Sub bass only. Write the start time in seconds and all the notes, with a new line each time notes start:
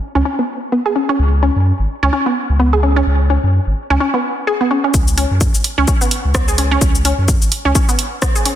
0.15 C#2
1.19 C#2
1.56 F#2
1.79 G#1
2.03 C#2
2.49 C#2
3.06 C#2
3.43 F#2
3.67 G#1
3.90 C#2
4.94 C#2
5.31 F#2
5.54 G#1
5.78 C#2
6.25 C#2
6.81 C#2
7.18 F#2
7.42 G#1
7.65 C#2